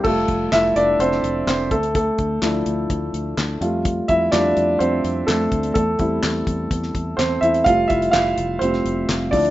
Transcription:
<<
  \new Staff \with { instrumentName = "Upright piano" } { \time 4/4 \key f \major \tempo 4 = 126 a'4 <e' e''>8 <d' d''>8 <c' c''>4 <c' c''>8 <a a'>8 | <a a'>2.~ <a a'>8 r8 | r8 <e' e''>8 <d' d''>4 <c' c''>4 <a a'>4 | <a a'>4 r2 <c' c''>8 <e' e''>8 |
f''8 <e' e''>8 <f' f''>4 <c' c''>4. d''8 | }
  \new Staff \with { instrumentName = "Upright piano" } { \time 4/4 \key f \major <g a f'>8 r2. r8 | r4 <f d' e'>8 r2 <g a f'>8 | r4 <g a f'>8 r2 r8 | r8 <g c' e'>8 r2. |
<g a f'>2 <g a f'>8 r4 <f d' e'>8 | }
  \new Staff \with { instrumentName = "Fingered electric bass" } { \clef bass \time 4/4 \key f \major f,,8 f,,8 f,,8 f,,8 f,,8 f,,8 f,,8 d,8~ | d,8 d,8 d,8 d,8 d,8 d,8 d,8 f,8~ | f,8 f,8 f,8 f,8 f,8 f,8 f,8 d,8 | e,8 e,8 e,8 e,8 e,8 e,8 e,8 e,8 |
f,,8 f,,8 f,,8 f,,8 f,,8 f,,8 f,,8 d,8 | }
  \new DrumStaff \with { instrumentName = "Drums" } \drummode { \time 4/4 <cymc bd>8 <hh bd>8 <hc hh sn>8 hh8 hh16 sn16 hh8 <hc hh sn>8 <hh bd>16 hh16 | <hh bd>8 <hh bd>8 <hc hh sn>8 hh8 <hh bd>8 hh8 <hc hh sn>8 hh8 | <hh bd>8 <hh bd>8 <hc hh sn>8 hh8 hh8 hh8 <hc hh sn>8 <hh bd>16 hh16 | <hh bd>8 <hh bd>8 <hc hh sn>8 <hh bd>8 <hh bd>16 sn16 <hh bd>8 <hc hh sn>8 hh16 hh16 |
<hh bd>8 <hh bd>16 hh16 <hc hh sn>8 hh8 hh16 sn16 hh8 <hc hh sn>8 <hho bd>16 hh16 | }
>>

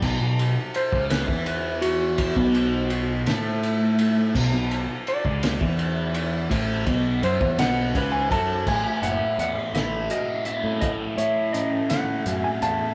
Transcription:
<<
  \new Staff \with { instrumentName = "Electric slide guitar" } { \time 6/8 \key a \major \tempo 4. = 56 << { r2. | r2. | r2. | r4. fis''8. gis''16 a''8 |
gis''8 fis''8 fis''8 e''8 dis''8 e''8 | dis''8 cis''8 dis''8 fis''8. gis''16 a''8 | } \\ { r4 c''8 b'8 b'8 fis'8~ | fis'4. r4. | r4 d''2~ | d''4 c''8 b'8 b'8 a'8 |
r2. | r2. | } >> }
  \new Staff \with { instrumentName = "Distorted electric guitar" } { \clef bass \time 6/8 \key a \major b,16 b,8 r8 cis8 e4~ e16~ | e16 b,4~ b,16 a4. | b,16 b,8 r8 cis8 e4~ e16 | a,8 b,8 fis16 e16 b,8 cis8 fis8 |
a,8 e'8 cis'8 e'8 fis'8 e'8 | a,8 e'8 cis'8 e'8 fis'8 e'8 | }
  \new Staff \with { instrumentName = "Picked electric bass" } { \clef bass \time 6/8 \key a \major b,,16 b,,8 r8 cis,8 e,4~ e,16~ | e,16 b,,4~ b,,16 a,4. | b,,16 b,,8 r8 cis,8 e,4~ e,16 | a,,8 b,,8 fis,16 e,16 b,,8 cis,8 fis,8 |
a,,16 r16 fis,,16 r16 e,16 r16 a,,8 r8. a,16~ | a,8 a,4. fis,16 r16 e,16 r16 | }
  \new DrumStaff \with { instrumentName = "Drums" } \drummode { \time 6/8 <cymc bd>8 cymr8 cymr16 bd16 <cymr sn>16 bd16 cymr8 cymr8 | <bd cymr>16 bd16 cymr8 cymr8 <cymr sn>8 cymr8 cymr8 | <cymc bd>8 cymr8 cymr16 bd16 <cymr sn>16 bd16 cymr8 cymr8 | <bd cymr>8 <bd cymr>8 cymr16 bd16 <cymr sn>8 <bd cymr>8 <bd cymr>8 |
<cymc bd>8 hh8 hh8 <hh sn>8 hh8 hh8 | <hh bd>8 hh8 hh8 <hh sn>8 hh8 hh8 | }
>>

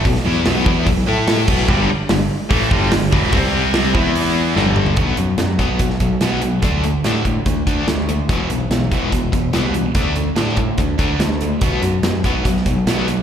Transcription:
<<
  \new Staff \with { instrumentName = "Distorted electric guitar" } { \clef bass \time 4/4 \key b \phrygian \tempo 4 = 145 <b, fis>8 <e b e'>8 <b, fis b>8 <e b e'>8 <b, fis>8 <a e' a'>4 <b, fis b>8 | <g, d g>8 r8 <g, d>8 r8 <a, e a>8 <g, d g>8 <g, d>8 <e, b, e>8 | <c g c'>4. <e b e'>4. <g, d g>4 | <b, fis b>8 <b, fis>8 <b, fis>8 <b, fis b>8 <b, fis>8 <b, fis>8 <b, fis b>8 <b, fis>8 |
<d a d'>8 <d a>8 <d a d'>8 <d a>8 <d a>8 <d a d'>8 <d a>8 <d a>8 | <e, b, e>8 <e, b,>8 <e, b,>8 <e, b, e>8 <e, b,>8 <e, b,>8 <e, b, e>8 <e, b,>8 | <d a d'>8 <d a>8 <d a d'>8 <d a>8 <d a>8 <d a d'>8 <d a>8 <d a>8 | <b, fis b>8 <b, fis>8 <b, fis>8 <b, fis b>8 <b, fis>8 <b, fis>8 <b, fis b>8 <b, fis>8 | }
  \new Staff \with { instrumentName = "Overdriven electric guitar" } { \clef bass \time 4/4 \key b \phrygian <b, fis>8 <e b e'>8 <b, fis b>8 <e b e'>8 <b, fis>8 <a e' a'>4 <b, fis b>8 | <g, d g>8 r8 <g, d>8 r8 <a, e a>8 <g, d g>8 <g, d>8 <e, b, e>8 | <c g c'>4. <e b e'>4. <g, d g>4 | <b, fis b>8 <b, fis>8 <b, fis>8 <b, fis b>8 <b, fis>8 <b, fis>8 <b, fis b>8 <b, fis>8 |
<d a d'>8 <d a>8 <d a d'>8 <d a>8 <d a>8 <d a d'>8 <d a>8 <d a>8 | <e, b, e>8 <e, b,>8 <e, b,>8 <e, b, e>8 <e, b,>8 <e, b,>8 <e, b, e>8 <e, b,>8 | <d a d'>8 <d a>8 <d a d'>8 <d a>8 <d a>8 <d a d'>8 <d a>8 <d a>8 | <b, fis b>8 <b, fis>8 <b, fis>8 <b, fis b>8 <b, fis>8 <b, fis>8 <b, fis b>8 <b, fis>8 | }
  \new Staff \with { instrumentName = "Distorted electric guitar" } { \clef bass \time 4/4 \key b \phrygian r1 | <g, d g>8 r8 <g, d>8 r8 <a, e a>8 <g, d g>8 <g, d>8 <e, b, e>8 | <c g c'>4. <e b e'>4. <g, d g>4 | r1 |
r1 | r1 | r1 | r1 | }
  \new Staff \with { instrumentName = "Picked electric bass" } { \clef bass \time 4/4 \key b \phrygian b,,8 e,8 b,,8 e,8 b,,8 a,4 b,,8 | g,,8 r8 g,,8 r8 a,,8 g,,8 g,,8 e,,8 | c,4. e,4. g,,4 | b,,8 fis,8 fis,8 b,,8 b,,8 b,,8 b,,4 |
d,4 a,4 d,8 d,8 d,4 | e,,8 b,,8 b,,8 e,,8 e,,8 e,,8 c,4 | d,4 a,4 d,8 d,8 d,4 | b,,8 fis,8 fis,8 b,,8 b,,8 b,,8 b,,4 | }
  \new DrumStaff \with { instrumentName = "Drums" } \drummode { \time 4/4 <hho bd>16 sn8. <hho sn>8 bd8 <hho bd>4 <hho sn>8 <cymc bd>8 | bd4 <hho sn>4 <hho bd>8 bd8 <hho sn>8 bd16 sn16 | <hho bd>16 sn8. <hho sn>8 bd8 hho4 sn16 tommh16 toml16 tomfh16 | <hh bd>8 hh8 <hh sn>8 <hh bd>8 <hh bd>16 sn16 <hh bd>8 <hh sn>8 hh8 |
<hh bd>8 hh8 <hh sn>8 <hh bd>8 <hh bd>8 <hh bd>8 <hh sn>8 hh8 | <hh bd>8 hh8 <hh sn>8 <hh bd>8 <hh bd>8 <hh bd>8 <hh sn>8 hh8 | <hh bd>8 hh8 <hh sn>8 <hh bd>8 <hh bd>8 <hh bd>8 <hh sn>8 hh8 | <hh bd>8 hh8 <hh sn>8 <hh bd>8 <hh bd>16 sn16 <hh bd>8 <hh sn>8 hh8 | }
>>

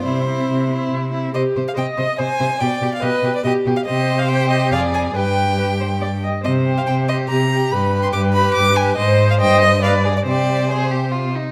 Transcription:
<<
  \new Staff \with { instrumentName = "Violin" } { \time 3/4 \key c \major \tempo 4 = 141 c''2 r4 | \key c \minor ees''8. f''16 g''8 ees''8 aes''4 | g''8. f''16 ees''8. d''16 ees''8. f''16 | ees''8. f''16 g''8 ees''8 f''8 aes''8 |
g''2~ g''8 r8 | ees''8. f''16 g''8 ees''8 bes''4 | b''8. c'''16 d'''8 b''8 d'''8 aes''8 | ees''8. f''16 g''8 ees''8 f''8. d''16 |
d''4 c''4 r4 | }
  \new Staff \with { instrumentName = "Viola" } { \time 3/4 \key c \major c'8 c'4 c'4 c'8 | \key c \minor g'4 ees''4 c''4 | d''4 b'4 g'4 | c''2 d''4 |
b'4 b'8 c''8 d''8 ees''8 | c''2 g'4 | b'4 b'2 | c''4 ees''4 d''4 |
c''2~ c''8 r8 | }
  \new Staff \with { instrumentName = "Violin" } { \time 3/4 \key c \major e'8 e'4 e'4 e'8 | \key c \minor c''8 c''8 c''8 c''8 c''8 c''8 | g'8 g'8 g'8 g'8 g'8 g'8 | g'4 g'4 aes'4 |
g'2~ g'8 r8 | r8 g'4 g'4 g'8 | g'8 g'4 g'4 g'8 | c''4 c''4 b'8 aes'8 |
g'4 aes'8 g'8 f'8 ees'8 | }
  \new Staff \with { instrumentName = "Cello" } { \clef bass \time 3/4 \key c \major c4 c4 c4 | \key c \minor c8 c8 c8 c8 c8 c8 | b,8 b,8 b,8 b,8 b,8 b,8 | c2 f,4 |
g,2~ g,8 r8 | c4 c4 c4 | g,4 g,4 g,4 | aes,4 g,2 |
c2~ c8 r8 | }
>>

